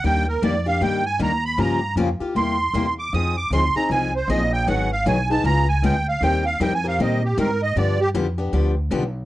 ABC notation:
X:1
M:4/4
L:1/16
Q:"Swing" 1/4=155
K:Eb
V:1 name="Accordion"
g2 B2 d2 f2 g2 a2 b2 =b2 | b4 z4 c'6 d'2 | e'2 d'2 c'2 b2 a2 c2 e2 g2 | _g2 f2 a2 =a2 b2 _a2 =g2 f2 |
g2 f2 (3g2 a2 f2 e2 G2 B2 e2 | d2 G2 z12 |]
V:2 name="Steel-string acoustic guitar"
[E,G,B,DG]2 z2 [E,G,B,DG] z [B,DG]2 [E,G,B,DG]2 z2 [E,G,B,DG] z3 | [_D,F,B,FG]2 z2 [D,F,B,FG] z [B,FG]2 [C,G,B,=EG]2 z2 [C,G,B,EG] z3 | [F,CEA]2 z2 [F,CEA] z [CEA]2 [F,CEA]2 z2 [F,CEA] z3 | [E,_G,_CEA]2 z2 [E,G,CEA] z [CEA]2 [_D,A,CFA]2 z2 [D,A,CFA] z3 |
[E,G,CGB]2 z2 [E,G,CGB] z [CGB]2 [E,G,CGB]2 z2 [E,G,CGB] z3 | [D,F,=B,DG]2 z2 [D,F,B,DG] z [B,DG]2 [D,F,B,DG]2 z2 [D,F,B,DG] z3 |]
V:3 name="Upright bass" clef=bass
E,,4 F,,4 G,,4 E,,4 | G,,4 F,,2 z2 =E,,4 E,,4 | F,,4 D,,2 z2 C,,4 B,,,4 | A,,,4 _C,,4 _D,,4 =D,,4 |
E,,4 F,,4 B,,4 A,,4 | G,,4 F,,4 D,,4 =B,,,4 |]